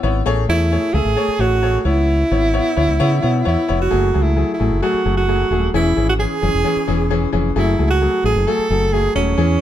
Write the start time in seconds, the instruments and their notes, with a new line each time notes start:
0.03 fingered electric bass G#1, grand piano B3 E4 C#5
0.26 fingered electric bass A1, grand piano A3 G#4 C#5
0.49 fingered electric bass E2, grand piano A3 G#4 C#5, tenor saxophone E4
0.72 grand piano A3 G#4 C#5
0.94 fingered electric bass C#2, grand piano A3 G#4 E5, tenor saxophone G#4
1.05 fingered electric bass A1
1.16 grand piano A3 G#4 C#5
1.28 muted fingered electric bass stroke
1.39 fingered electric bass A1, grand piano A3 G#4 C#5, tenor saxophone F#4
1.62 grand piano A3 G#4 C#5
1.81 tenor saxophone F#4
1.85 fingered electric bass C#2, grand piano B3 E4 C#5, tenor saxophone E4
2.31 fingered electric bass G#1, grand piano B3 E4 C#5
2.54 grand piano B3 E4 C#5
2.76 fingered electric bass D2, grand piano B3 E4 C#5
2.89 fingered electric bass C#2
3.00 fingered electric bass C#3, grand piano B3 E4 C#5
3.22 fingered electric bass B2, grand piano B3 E4 C#5
3.45 fingered electric bass E2, grand piano B3 E4 C#5, tenor saxophone E4
3.68 fingered electric bass F1, grand piano B3 E4 C#5
3.82 tenor saxophone F#4
3.90 fingered electric bass F#1, grand piano F#3 A3 G#4
4.14 fingered electric bass C#2, grand piano F#3 A3 G#4
4.23 tenor saxophone E4
4.36 grand piano F#3 A3 G#4
4.54 tenor saxophone E4
4.60 fingered electric bass A1, grand piano F#3 A3 G#4
4.72 fingered electric bass F#1
4.82 grand piano F#3 A3 G#4, tenor saxophone F#4
4.94 muted fingered electric bass stroke
5.05 fingered electric bass F#1, grand piano F#3 A3 G#4
5.17 tenor saxophone F#4
5.28 grand piano F#3 A3 G#4
5.50 fingered electric bass D#1, grand piano F#3 A3 G#4
5.74 fingered electric bass E1, grand piano E3 C#4 G#4, tenor saxophone E4
5.96 fingered electric bass G#1, grand piano E3 C#4 G#4
6.09 tenor saxophone F#4
6.19 grand piano E3 C#4 G#4, tenor saxophone G#4
6.42 fingered electric bass F#1, grand piano E3 C#4 G#4
6.54 fingered electric bass E1
6.64 grand piano E3 C#4 G#4
6.76 muted fingered electric bass stroke
6.88 fingered electric bass E1, grand piano E3 C#4 G#4
7.10 grand piano E3 C#4 G#4
7.32 fingered electric bass F1, grand piano E3 C#4 G#4
7.56 fingered electric bass F#1, grand piano F#3 A3 G#4, tenor saxophone E4
7.78 fingered electric bass C#2, grand piano F#3 A3 G#4
7.90 tenor saxophone F#4
8.01 grand piano F#3 A3 G#4
8.24 fingered electric bass A1, grand piano F#3 A3 G#4, tenor saxophone G#4
8.36 fingered electric bass F#1
8.47 grand piano F#3 A3 G#4, tenor saxophone A4
8.59 muted fingered electric bass stroke
8.70 fingered electric bass F#1, grand piano F#3 A3 G#4
8.93 grand piano F#3 A3 G#4, tenor saxophone G#4
9.15 fingered electric bass D#1, grand piano F#3 A3 G#4, tenor saxophone C#4
9.37 fingered electric bass E2, grand piano E3 C#4 G#4